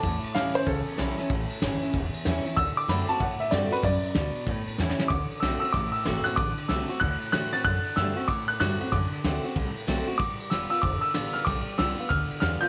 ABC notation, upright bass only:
X:1
M:4/4
L:1/8
Q:"Swing" 1/4=189
K:Dmix
V:1 name="Upright bass" clef=bass
E,, z D,, z ^C,, z B,,, z | A,,, z G,,, z E,,, z E,, z | D,, z F,, z A,, z G,, z | F,, z D,, z A,, z E,, z |
D,, z B,,, z A,,, z G,,, z | A,,, z C,, z D,, z E,, z | F,, z G,, z A,, z G,, z | F,, z D,, z C,, z B,,, z |
G,,, z E,,, z =F,,, z A,,, z | B,,, z C,, z D,, z E,, z |]